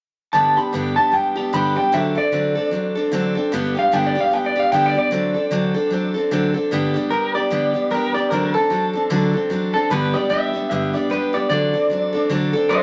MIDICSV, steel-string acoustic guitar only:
0, 0, Header, 1, 2, 480
1, 0, Start_track
1, 0, Key_signature, 1, "major"
1, 0, Tempo, 398936
1, 408, Time_signature, 4, 2, 24, 8
1, 15436, End_track
2, 0, Start_track
2, 0, Title_t, "Steel-string acoustic guitar"
2, 0, Program_c, 0, 25
2, 393, Note_on_c, 0, 43, 82
2, 401, Note_on_c, 0, 50, 75
2, 408, Note_on_c, 0, 55, 75
2, 413, Note_on_c, 0, 59, 76
2, 419, Note_on_c, 0, 62, 86
2, 421, Note_on_c, 0, 67, 79
2, 662, Note_off_c, 0, 67, 0
2, 677, Note_on_c, 0, 67, 50
2, 679, Note_off_c, 0, 62, 0
2, 684, Note_off_c, 0, 43, 0
2, 688, Note_off_c, 0, 50, 0
2, 691, Note_off_c, 0, 55, 0
2, 693, Note_on_c, 0, 62, 46
2, 694, Note_off_c, 0, 59, 0
2, 710, Note_on_c, 0, 59, 47
2, 720, Note_on_c, 0, 55, 42
2, 873, Note_on_c, 0, 43, 73
2, 875, Note_off_c, 0, 55, 0
2, 877, Note_off_c, 0, 59, 0
2, 880, Note_off_c, 0, 67, 0
2, 884, Note_on_c, 0, 50, 71
2, 888, Note_off_c, 0, 62, 0
2, 889, Note_on_c, 0, 55, 80
2, 892, Note_on_c, 0, 59, 78
2, 902, Note_on_c, 0, 62, 86
2, 904, Note_on_c, 0, 67, 77
2, 1145, Note_off_c, 0, 67, 0
2, 1158, Note_off_c, 0, 62, 0
2, 1159, Note_on_c, 0, 67, 56
2, 1164, Note_off_c, 0, 43, 0
2, 1169, Note_off_c, 0, 50, 0
2, 1172, Note_off_c, 0, 55, 0
2, 1172, Note_on_c, 0, 62, 49
2, 1173, Note_off_c, 0, 59, 0
2, 1186, Note_on_c, 0, 59, 45
2, 1198, Note_on_c, 0, 55, 41
2, 1330, Note_off_c, 0, 55, 0
2, 1344, Note_off_c, 0, 59, 0
2, 1344, Note_on_c, 0, 55, 52
2, 1359, Note_on_c, 0, 59, 52
2, 1360, Note_off_c, 0, 62, 0
2, 1361, Note_off_c, 0, 67, 0
2, 1374, Note_on_c, 0, 62, 55
2, 1386, Note_on_c, 0, 67, 57
2, 1617, Note_off_c, 0, 67, 0
2, 1631, Note_on_c, 0, 67, 61
2, 1638, Note_off_c, 0, 62, 0
2, 1639, Note_off_c, 0, 55, 0
2, 1646, Note_off_c, 0, 59, 0
2, 1652, Note_on_c, 0, 62, 51
2, 1667, Note_on_c, 0, 59, 53
2, 1676, Note_on_c, 0, 55, 42
2, 1837, Note_off_c, 0, 67, 0
2, 1838, Note_on_c, 0, 43, 84
2, 1840, Note_off_c, 0, 55, 0
2, 1841, Note_off_c, 0, 59, 0
2, 1842, Note_on_c, 0, 50, 79
2, 1847, Note_off_c, 0, 62, 0
2, 1854, Note_on_c, 0, 55, 85
2, 1856, Note_on_c, 0, 59, 90
2, 1862, Note_on_c, 0, 62, 85
2, 1867, Note_on_c, 0, 67, 90
2, 2099, Note_off_c, 0, 67, 0
2, 2113, Note_on_c, 0, 67, 55
2, 2117, Note_off_c, 0, 62, 0
2, 2126, Note_off_c, 0, 43, 0
2, 2128, Note_off_c, 0, 50, 0
2, 2131, Note_on_c, 0, 62, 47
2, 2132, Note_off_c, 0, 59, 0
2, 2134, Note_off_c, 0, 55, 0
2, 2146, Note_on_c, 0, 59, 41
2, 2159, Note_on_c, 0, 55, 44
2, 2313, Note_on_c, 0, 50, 73
2, 2315, Note_off_c, 0, 55, 0
2, 2318, Note_off_c, 0, 62, 0
2, 2318, Note_off_c, 0, 67, 0
2, 2319, Note_on_c, 0, 54, 87
2, 2323, Note_off_c, 0, 59, 0
2, 2328, Note_on_c, 0, 60, 78
2, 2333, Note_on_c, 0, 62, 88
2, 2342, Note_on_c, 0, 69, 84
2, 2575, Note_off_c, 0, 69, 0
2, 2589, Note_on_c, 0, 69, 49
2, 2600, Note_off_c, 0, 62, 0
2, 2603, Note_off_c, 0, 50, 0
2, 2606, Note_off_c, 0, 54, 0
2, 2610, Note_off_c, 0, 60, 0
2, 2615, Note_on_c, 0, 62, 41
2, 2628, Note_on_c, 0, 60, 41
2, 2789, Note_off_c, 0, 60, 0
2, 2791, Note_on_c, 0, 50, 72
2, 2795, Note_off_c, 0, 69, 0
2, 2796, Note_off_c, 0, 62, 0
2, 2799, Note_on_c, 0, 54, 73
2, 2803, Note_on_c, 0, 60, 79
2, 2811, Note_on_c, 0, 62, 82
2, 2817, Note_on_c, 0, 69, 78
2, 3057, Note_off_c, 0, 69, 0
2, 3071, Note_on_c, 0, 69, 54
2, 3079, Note_off_c, 0, 62, 0
2, 3082, Note_off_c, 0, 50, 0
2, 3086, Note_off_c, 0, 54, 0
2, 3088, Note_off_c, 0, 60, 0
2, 3094, Note_on_c, 0, 62, 53
2, 3111, Note_on_c, 0, 60, 44
2, 3264, Note_on_c, 0, 54, 64
2, 3266, Note_off_c, 0, 60, 0
2, 3276, Note_off_c, 0, 69, 0
2, 3279, Note_off_c, 0, 62, 0
2, 3281, Note_on_c, 0, 60, 68
2, 3293, Note_on_c, 0, 62, 72
2, 3308, Note_on_c, 0, 69, 59
2, 3539, Note_off_c, 0, 69, 0
2, 3553, Note_on_c, 0, 69, 57
2, 3558, Note_off_c, 0, 54, 0
2, 3561, Note_off_c, 0, 62, 0
2, 3566, Note_off_c, 0, 60, 0
2, 3576, Note_on_c, 0, 62, 63
2, 3594, Note_on_c, 0, 60, 51
2, 3749, Note_on_c, 0, 50, 85
2, 3751, Note_off_c, 0, 60, 0
2, 3756, Note_off_c, 0, 62, 0
2, 3757, Note_off_c, 0, 69, 0
2, 3760, Note_on_c, 0, 54, 91
2, 3766, Note_on_c, 0, 60, 99
2, 3771, Note_on_c, 0, 62, 102
2, 3776, Note_on_c, 0, 69, 100
2, 4018, Note_off_c, 0, 69, 0
2, 4033, Note_on_c, 0, 69, 64
2, 4040, Note_off_c, 0, 50, 0
2, 4043, Note_off_c, 0, 62, 0
2, 4046, Note_off_c, 0, 54, 0
2, 4048, Note_off_c, 0, 60, 0
2, 4057, Note_on_c, 0, 62, 64
2, 4072, Note_on_c, 0, 60, 52
2, 4235, Note_on_c, 0, 43, 92
2, 4236, Note_off_c, 0, 69, 0
2, 4244, Note_on_c, 0, 50, 91
2, 4246, Note_off_c, 0, 62, 0
2, 4249, Note_off_c, 0, 60, 0
2, 4251, Note_on_c, 0, 55, 94
2, 4254, Note_on_c, 0, 59, 97
2, 4260, Note_on_c, 0, 62, 89
2, 4267, Note_on_c, 0, 67, 98
2, 4497, Note_off_c, 0, 67, 0
2, 4511, Note_off_c, 0, 62, 0
2, 4511, Note_on_c, 0, 67, 50
2, 4523, Note_off_c, 0, 43, 0
2, 4524, Note_off_c, 0, 59, 0
2, 4526, Note_on_c, 0, 62, 47
2, 4527, Note_off_c, 0, 50, 0
2, 4531, Note_off_c, 0, 55, 0
2, 4539, Note_on_c, 0, 59, 46
2, 4554, Note_on_c, 0, 55, 48
2, 4713, Note_on_c, 0, 43, 73
2, 4715, Note_off_c, 0, 67, 0
2, 4716, Note_off_c, 0, 55, 0
2, 4720, Note_off_c, 0, 59, 0
2, 4722, Note_on_c, 0, 50, 77
2, 4723, Note_off_c, 0, 62, 0
2, 4730, Note_on_c, 0, 55, 81
2, 4734, Note_on_c, 0, 59, 74
2, 4738, Note_on_c, 0, 62, 82
2, 4743, Note_on_c, 0, 67, 87
2, 4982, Note_off_c, 0, 67, 0
2, 4997, Note_on_c, 0, 67, 53
2, 5001, Note_off_c, 0, 43, 0
2, 5003, Note_off_c, 0, 62, 0
2, 5006, Note_off_c, 0, 50, 0
2, 5010, Note_off_c, 0, 55, 0
2, 5012, Note_off_c, 0, 59, 0
2, 5017, Note_on_c, 0, 62, 51
2, 5029, Note_on_c, 0, 59, 42
2, 5037, Note_on_c, 0, 55, 46
2, 5177, Note_off_c, 0, 55, 0
2, 5192, Note_on_c, 0, 55, 55
2, 5195, Note_off_c, 0, 59, 0
2, 5198, Note_off_c, 0, 67, 0
2, 5208, Note_off_c, 0, 62, 0
2, 5209, Note_on_c, 0, 59, 66
2, 5221, Note_on_c, 0, 62, 60
2, 5233, Note_on_c, 0, 67, 63
2, 5466, Note_off_c, 0, 67, 0
2, 5480, Note_on_c, 0, 67, 59
2, 5481, Note_off_c, 0, 55, 0
2, 5484, Note_off_c, 0, 62, 0
2, 5489, Note_off_c, 0, 59, 0
2, 5498, Note_on_c, 0, 62, 54
2, 5511, Note_on_c, 0, 59, 51
2, 5523, Note_on_c, 0, 55, 45
2, 5676, Note_on_c, 0, 43, 72
2, 5679, Note_off_c, 0, 67, 0
2, 5680, Note_off_c, 0, 55, 0
2, 5681, Note_off_c, 0, 59, 0
2, 5682, Note_on_c, 0, 50, 86
2, 5688, Note_off_c, 0, 62, 0
2, 5694, Note_on_c, 0, 55, 85
2, 5695, Note_on_c, 0, 59, 79
2, 5703, Note_on_c, 0, 62, 95
2, 5704, Note_on_c, 0, 67, 90
2, 5939, Note_off_c, 0, 67, 0
2, 5953, Note_on_c, 0, 67, 58
2, 5958, Note_off_c, 0, 62, 0
2, 5963, Note_off_c, 0, 43, 0
2, 5966, Note_off_c, 0, 50, 0
2, 5969, Note_off_c, 0, 59, 0
2, 5972, Note_off_c, 0, 55, 0
2, 5972, Note_on_c, 0, 62, 48
2, 5983, Note_on_c, 0, 59, 52
2, 5994, Note_on_c, 0, 55, 47
2, 6147, Note_on_c, 0, 50, 84
2, 6150, Note_off_c, 0, 55, 0
2, 6155, Note_off_c, 0, 67, 0
2, 6155, Note_on_c, 0, 54, 76
2, 6159, Note_off_c, 0, 59, 0
2, 6160, Note_off_c, 0, 62, 0
2, 6164, Note_on_c, 0, 60, 93
2, 6175, Note_on_c, 0, 62, 83
2, 6178, Note_on_c, 0, 69, 89
2, 6414, Note_off_c, 0, 69, 0
2, 6429, Note_on_c, 0, 69, 56
2, 6438, Note_off_c, 0, 50, 0
2, 6438, Note_off_c, 0, 62, 0
2, 6441, Note_off_c, 0, 54, 0
2, 6446, Note_off_c, 0, 60, 0
2, 6453, Note_on_c, 0, 62, 48
2, 6472, Note_on_c, 0, 60, 42
2, 6626, Note_on_c, 0, 50, 75
2, 6630, Note_off_c, 0, 60, 0
2, 6633, Note_off_c, 0, 69, 0
2, 6635, Note_off_c, 0, 62, 0
2, 6636, Note_on_c, 0, 54, 95
2, 6645, Note_on_c, 0, 60, 87
2, 6649, Note_on_c, 0, 62, 84
2, 6654, Note_on_c, 0, 69, 97
2, 6897, Note_off_c, 0, 69, 0
2, 6912, Note_on_c, 0, 69, 64
2, 6917, Note_off_c, 0, 50, 0
2, 6919, Note_off_c, 0, 62, 0
2, 6922, Note_off_c, 0, 54, 0
2, 6926, Note_off_c, 0, 60, 0
2, 6934, Note_on_c, 0, 62, 55
2, 6955, Note_on_c, 0, 60, 52
2, 7105, Note_on_c, 0, 54, 66
2, 7111, Note_off_c, 0, 60, 0
2, 7114, Note_off_c, 0, 69, 0
2, 7125, Note_off_c, 0, 62, 0
2, 7125, Note_on_c, 0, 60, 63
2, 7139, Note_on_c, 0, 62, 76
2, 7145, Note_on_c, 0, 69, 64
2, 7374, Note_off_c, 0, 69, 0
2, 7388, Note_on_c, 0, 69, 61
2, 7396, Note_off_c, 0, 54, 0
2, 7399, Note_off_c, 0, 62, 0
2, 7406, Note_off_c, 0, 60, 0
2, 7413, Note_on_c, 0, 62, 54
2, 7434, Note_on_c, 0, 60, 52
2, 7592, Note_off_c, 0, 69, 0
2, 7593, Note_off_c, 0, 60, 0
2, 7594, Note_on_c, 0, 50, 94
2, 7599, Note_off_c, 0, 62, 0
2, 7601, Note_on_c, 0, 54, 92
2, 7607, Note_on_c, 0, 60, 87
2, 7613, Note_on_c, 0, 62, 96
2, 7621, Note_on_c, 0, 69, 107
2, 7855, Note_off_c, 0, 69, 0
2, 7870, Note_on_c, 0, 69, 58
2, 7877, Note_off_c, 0, 62, 0
2, 7880, Note_off_c, 0, 50, 0
2, 7884, Note_off_c, 0, 54, 0
2, 7887, Note_off_c, 0, 60, 0
2, 7892, Note_on_c, 0, 62, 56
2, 7908, Note_on_c, 0, 60, 50
2, 8073, Note_off_c, 0, 69, 0
2, 8073, Note_on_c, 0, 43, 77
2, 8082, Note_on_c, 0, 50, 87
2, 8083, Note_off_c, 0, 62, 0
2, 8087, Note_off_c, 0, 60, 0
2, 8088, Note_on_c, 0, 55, 92
2, 8092, Note_on_c, 0, 59, 94
2, 8097, Note_on_c, 0, 62, 91
2, 8103, Note_on_c, 0, 67, 110
2, 8336, Note_off_c, 0, 67, 0
2, 8350, Note_on_c, 0, 67, 63
2, 8355, Note_off_c, 0, 62, 0
2, 8360, Note_off_c, 0, 43, 0
2, 8364, Note_off_c, 0, 50, 0
2, 8366, Note_off_c, 0, 59, 0
2, 8367, Note_off_c, 0, 55, 0
2, 8370, Note_on_c, 0, 62, 59
2, 8381, Note_on_c, 0, 59, 53
2, 8388, Note_on_c, 0, 55, 54
2, 8533, Note_off_c, 0, 55, 0
2, 8547, Note_on_c, 0, 55, 59
2, 8548, Note_off_c, 0, 59, 0
2, 8552, Note_off_c, 0, 67, 0
2, 8559, Note_off_c, 0, 62, 0
2, 8562, Note_on_c, 0, 59, 61
2, 8573, Note_on_c, 0, 62, 63
2, 8587, Note_on_c, 0, 67, 65
2, 8823, Note_off_c, 0, 67, 0
2, 8837, Note_off_c, 0, 55, 0
2, 8838, Note_on_c, 0, 67, 59
2, 8839, Note_off_c, 0, 62, 0
2, 8844, Note_off_c, 0, 59, 0
2, 8854, Note_on_c, 0, 62, 47
2, 8868, Note_on_c, 0, 59, 47
2, 8877, Note_on_c, 0, 55, 45
2, 9027, Note_off_c, 0, 55, 0
2, 9030, Note_on_c, 0, 43, 80
2, 9034, Note_off_c, 0, 59, 0
2, 9036, Note_off_c, 0, 67, 0
2, 9037, Note_on_c, 0, 50, 85
2, 9041, Note_off_c, 0, 62, 0
2, 9042, Note_on_c, 0, 55, 70
2, 9048, Note_on_c, 0, 59, 86
2, 9055, Note_on_c, 0, 62, 80
2, 9061, Note_on_c, 0, 67, 83
2, 9297, Note_off_c, 0, 67, 0
2, 9308, Note_off_c, 0, 62, 0
2, 9312, Note_on_c, 0, 67, 51
2, 9317, Note_off_c, 0, 43, 0
2, 9321, Note_off_c, 0, 50, 0
2, 9323, Note_on_c, 0, 62, 54
2, 9324, Note_off_c, 0, 55, 0
2, 9327, Note_off_c, 0, 59, 0
2, 9340, Note_on_c, 0, 59, 51
2, 9349, Note_on_c, 0, 55, 45
2, 9497, Note_off_c, 0, 55, 0
2, 9511, Note_off_c, 0, 59, 0
2, 9512, Note_on_c, 0, 55, 63
2, 9513, Note_off_c, 0, 67, 0
2, 9518, Note_off_c, 0, 62, 0
2, 9525, Note_on_c, 0, 59, 71
2, 9540, Note_on_c, 0, 62, 77
2, 9556, Note_on_c, 0, 67, 70
2, 9783, Note_off_c, 0, 67, 0
2, 9798, Note_off_c, 0, 55, 0
2, 9798, Note_on_c, 0, 67, 62
2, 9801, Note_off_c, 0, 62, 0
2, 9805, Note_off_c, 0, 59, 0
2, 9815, Note_on_c, 0, 62, 52
2, 9827, Note_on_c, 0, 59, 46
2, 9843, Note_on_c, 0, 55, 46
2, 9996, Note_off_c, 0, 67, 0
2, 9997, Note_on_c, 0, 50, 77
2, 10002, Note_off_c, 0, 55, 0
2, 10004, Note_off_c, 0, 62, 0
2, 10007, Note_on_c, 0, 54, 77
2, 10010, Note_off_c, 0, 59, 0
2, 10016, Note_on_c, 0, 60, 96
2, 10021, Note_on_c, 0, 62, 89
2, 10031, Note_on_c, 0, 69, 80
2, 10258, Note_off_c, 0, 69, 0
2, 10273, Note_on_c, 0, 69, 58
2, 10281, Note_off_c, 0, 50, 0
2, 10281, Note_off_c, 0, 62, 0
2, 10286, Note_off_c, 0, 54, 0
2, 10290, Note_off_c, 0, 60, 0
2, 10295, Note_on_c, 0, 62, 52
2, 10314, Note_on_c, 0, 60, 40
2, 10468, Note_on_c, 0, 54, 67
2, 10471, Note_off_c, 0, 60, 0
2, 10473, Note_off_c, 0, 69, 0
2, 10485, Note_off_c, 0, 62, 0
2, 10485, Note_on_c, 0, 60, 59
2, 10498, Note_on_c, 0, 62, 69
2, 10515, Note_on_c, 0, 69, 64
2, 10735, Note_off_c, 0, 69, 0
2, 10749, Note_on_c, 0, 69, 61
2, 10757, Note_off_c, 0, 54, 0
2, 10759, Note_off_c, 0, 62, 0
2, 10765, Note_off_c, 0, 60, 0
2, 10774, Note_on_c, 0, 62, 57
2, 10794, Note_on_c, 0, 60, 47
2, 10949, Note_off_c, 0, 60, 0
2, 10949, Note_on_c, 0, 50, 90
2, 10952, Note_off_c, 0, 69, 0
2, 10954, Note_on_c, 0, 54, 91
2, 10956, Note_off_c, 0, 62, 0
2, 10963, Note_on_c, 0, 60, 88
2, 10970, Note_on_c, 0, 62, 94
2, 10977, Note_on_c, 0, 69, 95
2, 11215, Note_off_c, 0, 69, 0
2, 11230, Note_on_c, 0, 69, 55
2, 11237, Note_off_c, 0, 50, 0
2, 11238, Note_off_c, 0, 62, 0
2, 11239, Note_off_c, 0, 54, 0
2, 11244, Note_off_c, 0, 60, 0
2, 11253, Note_on_c, 0, 62, 51
2, 11272, Note_on_c, 0, 60, 57
2, 11427, Note_off_c, 0, 60, 0
2, 11427, Note_on_c, 0, 54, 74
2, 11432, Note_off_c, 0, 69, 0
2, 11440, Note_off_c, 0, 62, 0
2, 11442, Note_on_c, 0, 60, 69
2, 11455, Note_on_c, 0, 62, 76
2, 11469, Note_on_c, 0, 69, 88
2, 11697, Note_off_c, 0, 69, 0
2, 11711, Note_on_c, 0, 69, 55
2, 11716, Note_off_c, 0, 54, 0
2, 11722, Note_off_c, 0, 62, 0
2, 11724, Note_off_c, 0, 60, 0
2, 11737, Note_on_c, 0, 62, 53
2, 11753, Note_on_c, 0, 60, 49
2, 11913, Note_off_c, 0, 69, 0
2, 11913, Note_on_c, 0, 43, 76
2, 11920, Note_on_c, 0, 50, 80
2, 11926, Note_off_c, 0, 62, 0
2, 11926, Note_on_c, 0, 55, 98
2, 11928, Note_off_c, 0, 60, 0
2, 11933, Note_on_c, 0, 59, 80
2, 11939, Note_on_c, 0, 62, 87
2, 11943, Note_on_c, 0, 67, 92
2, 12180, Note_off_c, 0, 67, 0
2, 12195, Note_off_c, 0, 62, 0
2, 12195, Note_on_c, 0, 67, 51
2, 12200, Note_off_c, 0, 43, 0
2, 12203, Note_off_c, 0, 50, 0
2, 12206, Note_off_c, 0, 55, 0
2, 12209, Note_off_c, 0, 59, 0
2, 12209, Note_on_c, 0, 62, 55
2, 12225, Note_on_c, 0, 59, 48
2, 12235, Note_on_c, 0, 55, 48
2, 12374, Note_off_c, 0, 55, 0
2, 12388, Note_off_c, 0, 59, 0
2, 12388, Note_on_c, 0, 55, 67
2, 12395, Note_off_c, 0, 67, 0
2, 12402, Note_off_c, 0, 62, 0
2, 12403, Note_on_c, 0, 59, 63
2, 12419, Note_on_c, 0, 62, 68
2, 12431, Note_on_c, 0, 67, 70
2, 12658, Note_off_c, 0, 67, 0
2, 12673, Note_on_c, 0, 67, 59
2, 12675, Note_off_c, 0, 62, 0
2, 12678, Note_off_c, 0, 55, 0
2, 12685, Note_off_c, 0, 59, 0
2, 12689, Note_on_c, 0, 62, 59
2, 12702, Note_on_c, 0, 59, 49
2, 12717, Note_on_c, 0, 55, 43
2, 12874, Note_off_c, 0, 67, 0
2, 12879, Note_off_c, 0, 55, 0
2, 12881, Note_on_c, 0, 43, 78
2, 12883, Note_off_c, 0, 59, 0
2, 12883, Note_off_c, 0, 62, 0
2, 12887, Note_on_c, 0, 50, 77
2, 12893, Note_on_c, 0, 55, 83
2, 12897, Note_on_c, 0, 59, 78
2, 12901, Note_on_c, 0, 62, 78
2, 12905, Note_on_c, 0, 67, 81
2, 13142, Note_off_c, 0, 67, 0
2, 13156, Note_on_c, 0, 67, 58
2, 13160, Note_off_c, 0, 62, 0
2, 13164, Note_off_c, 0, 43, 0
2, 13167, Note_off_c, 0, 50, 0
2, 13170, Note_off_c, 0, 55, 0
2, 13173, Note_off_c, 0, 59, 0
2, 13175, Note_on_c, 0, 62, 60
2, 13189, Note_on_c, 0, 59, 53
2, 13199, Note_on_c, 0, 55, 53
2, 13338, Note_off_c, 0, 55, 0
2, 13351, Note_off_c, 0, 59, 0
2, 13352, Note_on_c, 0, 55, 59
2, 13357, Note_off_c, 0, 67, 0
2, 13366, Note_off_c, 0, 62, 0
2, 13366, Note_on_c, 0, 59, 60
2, 13383, Note_on_c, 0, 62, 71
2, 13395, Note_on_c, 0, 67, 76
2, 13616, Note_off_c, 0, 67, 0
2, 13630, Note_on_c, 0, 67, 62
2, 13636, Note_off_c, 0, 62, 0
2, 13640, Note_off_c, 0, 55, 0
2, 13644, Note_off_c, 0, 59, 0
2, 13650, Note_on_c, 0, 62, 55
2, 13659, Note_on_c, 0, 59, 47
2, 13673, Note_on_c, 0, 55, 44
2, 13832, Note_on_c, 0, 50, 86
2, 13834, Note_off_c, 0, 67, 0
2, 13837, Note_off_c, 0, 55, 0
2, 13842, Note_on_c, 0, 54, 81
2, 13844, Note_off_c, 0, 62, 0
2, 13846, Note_off_c, 0, 59, 0
2, 13851, Note_on_c, 0, 60, 82
2, 13856, Note_on_c, 0, 62, 88
2, 13864, Note_on_c, 0, 69, 83
2, 14103, Note_off_c, 0, 69, 0
2, 14118, Note_on_c, 0, 69, 57
2, 14121, Note_off_c, 0, 50, 0
2, 14124, Note_off_c, 0, 62, 0
2, 14126, Note_off_c, 0, 54, 0
2, 14131, Note_off_c, 0, 60, 0
2, 14138, Note_on_c, 0, 62, 51
2, 14161, Note_on_c, 0, 60, 42
2, 14315, Note_on_c, 0, 54, 62
2, 14317, Note_off_c, 0, 60, 0
2, 14318, Note_off_c, 0, 69, 0
2, 14329, Note_off_c, 0, 62, 0
2, 14332, Note_on_c, 0, 60, 66
2, 14345, Note_on_c, 0, 62, 59
2, 14354, Note_on_c, 0, 69, 72
2, 14576, Note_off_c, 0, 69, 0
2, 14591, Note_on_c, 0, 69, 65
2, 14600, Note_off_c, 0, 62, 0
2, 14603, Note_off_c, 0, 54, 0
2, 14611, Note_off_c, 0, 60, 0
2, 14614, Note_on_c, 0, 62, 62
2, 14632, Note_on_c, 0, 60, 53
2, 14793, Note_on_c, 0, 50, 83
2, 14795, Note_off_c, 0, 60, 0
2, 14795, Note_off_c, 0, 69, 0
2, 14801, Note_off_c, 0, 62, 0
2, 14802, Note_on_c, 0, 54, 87
2, 14809, Note_on_c, 0, 60, 83
2, 14815, Note_on_c, 0, 62, 92
2, 14823, Note_on_c, 0, 69, 90
2, 15063, Note_off_c, 0, 69, 0
2, 15078, Note_on_c, 0, 69, 67
2, 15082, Note_off_c, 0, 50, 0
2, 15087, Note_off_c, 0, 54, 0
2, 15087, Note_off_c, 0, 62, 0
2, 15091, Note_off_c, 0, 60, 0
2, 15102, Note_on_c, 0, 62, 60
2, 15123, Note_on_c, 0, 60, 51
2, 15270, Note_on_c, 0, 54, 65
2, 15273, Note_off_c, 0, 60, 0
2, 15280, Note_off_c, 0, 69, 0
2, 15287, Note_on_c, 0, 60, 71
2, 15289, Note_off_c, 0, 62, 0
2, 15303, Note_on_c, 0, 62, 67
2, 15314, Note_on_c, 0, 69, 67
2, 15436, Note_off_c, 0, 54, 0
2, 15436, Note_off_c, 0, 60, 0
2, 15436, Note_off_c, 0, 62, 0
2, 15436, Note_off_c, 0, 69, 0
2, 15436, End_track
0, 0, End_of_file